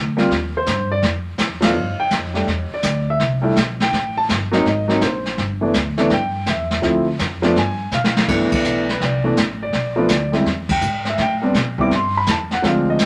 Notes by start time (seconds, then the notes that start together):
Already playing: D2
0.17 G3 A#3 C4 F4, snare
0.31 D#2, brush sweep, kick, snare
0.57 C5
0.66 G2, kick, snare, hi-hat pedal
0.92 D5
1.02 F2, brush sweep, kick, snare
1.38 E2, kick, snare, hi-hat pedal
1.61 F3 A3 B3 D4 F5, snare, ride
1.74 G2, brush sweep
1.98 G5, muted upright bass stroke
2.10 F2, kick, snare, hi-hat pedal
2.34 G3 A3 D4 G4, snare
2.47 E2, brush sweep, kick, snare
2.71 D5, muted upright bass stroke
2.83 D2, kick, snare, hi-hat pedal
3.10 E5
3.19 C2, brush sweep, kick, snare
3.42 G3 A3 D4 E4
3.56 B1, kick, snare, hi-hat pedal
3.80 G5, snare
3.93 A1, brush sweep, kick, snare
4.17 A5
4.29 G1, kick, snare, hi-hat pedal
4.51 F#3 A#3 C4 D#4, snare
4.65 G#1 D#5, brush sweep, kick, snare
4.88 F#3 A#3 C4 D#4, snare
5.01 A#1, kick, snare, hi-hat pedal
5.06 C5
5.25 snare
5.38 G1, brush sweep, kick, snare
5.61 E3 A3 B3 D4
5.74 D2, kick, snare, hi-hat pedal
5.97 E3 A3 B3 D4, snare
6.10 G2 G5, brush sweep, kick, snare
6.46 E2 E5, kick, snare, hi-hat pedal
6.71 snare
6.82 D2 F3 A3 C4 E4, brush sweep, kick, snare
7.19 F2, kick, snare, hi-hat pedal
7.42 F3 A3 B3 D4, snare
7.55 G2 G#5, brush sweep, kick, snare
7.91 B2 F5, snare, hi-hat pedal
8.04 snare
8.17 snare
8.28 G2 E3 A3 B3 D4, brush sweep, kick, snare, crash
8.51 D5, muted upright bass stroke, kick, crash
8.64 B1, hi-hat pedal
8.89 B4, snare
9.00 C2 D5, brush sweep, kick, snare
9.24 E3 A3 B3 D4
9.37 A1, kick, snare, hi-hat pedal
9.63 D5
9.73 B1, brush sweep, kick, snare
9.96 F3 A3 B3 D4 B4
10.08 D2 D5, kick, snare, hi-hat pedal
10.32 G3 G#3 C4 E4, snare
10.45 E2, brush sweep, kick, snare
10.69 G5, kick, crash
10.81 G#2, hi-hat pedal
11.05 E5, snare
11.18 A2 G5, brush sweep, kick, snare
11.42 G3 B3 C4 D4
11.54 B2, kick, snare, hi-hat pedal
11.78 G3 B3 C4 E4 D6, kick
11.91 G2, brush sweep, kick, snare
11.95 C6
12.17 B5
12.26 E2, kick, snare, hi-hat pedal
12.31 A5
12.51 F#5, snare
12.62 D2 F3 G#3 C4 D4, brush sweep, kick, snare
12.67 F5
12.90 D#5
12.99 C2, kick, snare, hi-hat pedal